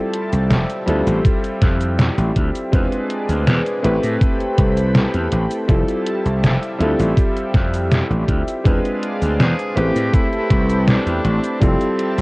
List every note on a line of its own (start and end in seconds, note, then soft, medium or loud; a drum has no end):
0.00 0.80 G3 medium
0.00 0.80 C4 medium
0.00 0.81 E4 medium
0.00 0.81 F4 medium
0.00 0.87 G4 medium
0.00 0.81 A4 medium
0.00 2.70 E5 medium
0.00 0.87 A5 medium
0.14 closed hi-hat loud
0.33 0.52 C2 medium
0.33 closed hi-hat soft
0.33 cabasa medium
0.51 0.64 F1 medium
0.51 snare loud
0.51 closed hi-hat medium
0.51 cabasa soft
0.70 closed hi-hat soft
0.70 cabasa soft
0.86 1.01 D2 loud
0.86 2.65 G3 medium
0.86 2.65 C4 medium
0.86 2.66 E4 medium
0.86 2.66 F4 medium
0.86 2.71 G4 medium
0.86 2.66 A4 loud
0.86 closed hi-hat loud
1.07 1.19 A1 medium
1.07 closed hi-hat soft
1.07 cabasa medium
1.25 kick loud
1.25 closed hi-hat medium
1.25 cabasa soft
1.44 closed hi-hat soft
1.44 cabasa soft
1.62 2.09 F2 loud
1.62 kick loud
1.62 snare medium
1.62 closed hi-hat medium
1.81 closed hi-hat soft
1.81 cabasa medium
1.99 snare loud
1.99 closed hi-hat medium
1.99 cabasa soft
2.18 2.30 A1 medium
2.18 closed hi-hat soft
2.18 cabasa soft
2.36 2.49 D2 medium
2.36 kick medium
2.36 closed hi-hat medium
2.55 closed hi-hat soft
2.55 cabasa medium
2.72 2.86 E2 loud
2.72 3.76 G#3 medium
2.72 3.77 C4 medium
2.72 3.77 D4 medium
2.72 3.77 F4 medium
2.72 3.83 G#4 medium
2.72 3.78 B4 medium
2.72 3.83 D5 medium
2.72 kick loud
2.72 closed hi-hat medium
2.72 cabasa soft
2.92 closed hi-hat soft
2.92 cabasa soft
3.10 closed hi-hat loud
3.29 3.47 D2 medium
3.29 closed hi-hat soft
3.29 cabasa medium
3.47 3.60 E2 medium
3.47 snare loud
3.47 closed hi-hat medium
3.47 cabasa soft
3.66 closed hi-hat soft
3.66 cabasa soft
3.82 3.97 A1 loud
3.82 5.61 A3 medium
3.82 5.62 C4 medium
3.82 5.67 C4 medium
3.82 5.62 E4 medium
3.82 5.62 G4 medium
3.82 5.68 A4 medium
3.82 5.63 B4 loud
3.82 5.68 G5 medium
3.82 5.67 B5 medium
3.82 closed hi-hat medium
4.03 4.16 A2 medium
4.03 closed hi-hat soft
4.03 cabasa medium
4.21 kick loud
4.21 closed hi-hat medium
4.21 cabasa soft
4.40 closed hi-hat soft
4.40 cabasa soft
4.58 5.05 C2 medium
4.58 kick loud
4.58 closed hi-hat medium
4.77 closed hi-hat soft
4.77 cabasa medium
4.95 snare loud
4.95 closed hi-hat medium
4.95 cabasa soft
5.14 5.27 E2 medium
5.14 closed hi-hat soft
5.14 cabasa soft
5.32 5.46 A1 medium
5.32 closed hi-hat medium
5.51 closed hi-hat soft
5.51 cabasa medium
5.68 5.83 F1 loud
5.68 6.72 G3 medium
5.68 6.73 C4 medium
5.68 6.73 E4 medium
5.68 6.74 F4 medium
5.68 8.63 G4 medium
5.68 6.74 A4 medium
5.68 8.63 E5 medium
5.68 6.79 A5 medium
5.68 kick loud
5.68 closed hi-hat medium
5.68 cabasa soft
5.88 closed hi-hat soft
5.88 cabasa soft
6.06 closed hi-hat medium
6.25 6.45 C2 medium
6.25 closed hi-hat soft
6.25 cabasa medium
6.43 6.57 F1 medium
6.43 snare loud
6.43 closed hi-hat medium
6.43 cabasa soft
6.63 closed hi-hat soft
6.63 cabasa soft
6.79 6.94 D2 loud
6.79 8.57 G3 medium
6.79 8.58 C4 medium
6.79 8.58 E4 medium
6.79 8.59 F4 medium
6.79 8.59 A4 loud
6.79 closed hi-hat medium
6.99 7.12 A1 medium
6.99 closed hi-hat soft
6.99 cabasa medium
7.17 kick loud
7.17 closed hi-hat medium
7.17 cabasa soft
7.37 closed hi-hat soft
7.37 cabasa soft
7.54 8.01 F2 medium
7.54 kick loud
7.54 snare medium
7.54 closed hi-hat medium
7.74 closed hi-hat soft
7.74 cabasa medium
7.92 snare loud
7.92 closed hi-hat medium
7.92 cabasa soft
8.10 8.23 A1 medium
8.10 closed hi-hat soft
8.10 cabasa soft
8.28 8.42 D2 medium
8.28 kick medium
8.28 closed hi-hat medium
8.48 closed hi-hat soft
8.48 cabasa medium
8.64 8.79 E2 loud
8.64 9.69 G#3 medium
8.64 9.69 C4 medium
8.64 9.69 D4 medium
8.64 9.70 F4 medium
8.64 9.76 G#4 medium
8.64 9.70 B4 medium
8.64 9.76 D5 medium
8.64 9.76 F5 medium
8.64 kick loud
8.64 closed hi-hat medium
8.64 cabasa soft
8.85 closed hi-hat soft
8.85 cabasa soft
9.03 closed hi-hat medium
9.22 9.39 D2 medium
9.22 closed hi-hat soft
9.22 cabasa soft
9.39 9.53 E2 medium
9.39 9.78 G#4 loud
9.39 snare loud
9.39 closed hi-hat medium
9.39 cabasa soft
9.59 closed hi-hat soft
9.59 cabasa soft
9.75 9.90 A1 loud
9.75 11.54 A3 medium
9.75 11.54 C4 medium
9.75 11.60 C4 medium
9.75 11.54 E4 medium
9.75 10.15 G4 loud
9.75 11.55 G4 medium
9.75 11.60 A4 medium
9.75 11.55 B4 loud
9.75 11.60 G5 medium
9.75 11.60 B5 medium
9.75 closed hi-hat medium
9.96 10.08 A2 medium
9.96 closed hi-hat soft
9.96 cabasa medium
10.14 10.89 E4 loud
10.14 kick loud
10.14 closed hi-hat medium
10.14 cabasa soft
10.33 closed hi-hat soft
10.33 cabasa soft
10.51 10.98 C2 medium
10.51 kick loud
10.51 closed hi-hat medium
10.70 closed hi-hat soft
10.70 cabasa medium
10.88 11.61 D4 medium
10.88 snare loud
10.88 closed hi-hat medium
10.88 cabasa soft
11.07 11.19 E2 medium
11.07 closed hi-hat soft
11.07 cabasa soft
11.25 11.38 A1 medium
11.25 closed hi-hat medium
11.44 closed hi-hat soft
11.44 cabasa medium
11.60 11.75 F1 loud
11.60 12.22 G3 medium
11.60 12.22 C4 medium
11.60 12.22 C4 loud
11.60 12.22 E4 medium
11.60 12.22 F4 medium
11.60 12.22 G4 medium
11.60 12.22 A4 medium
11.60 12.22 E5 medium
11.60 12.22 A5 medium
11.60 kick loud
11.60 closed hi-hat medium
11.60 cabasa soft
11.81 closed hi-hat soft
11.81 cabasa soft
11.99 closed hi-hat medium
12.18 12.22 C2 medium
12.18 closed hi-hat soft
12.18 cabasa medium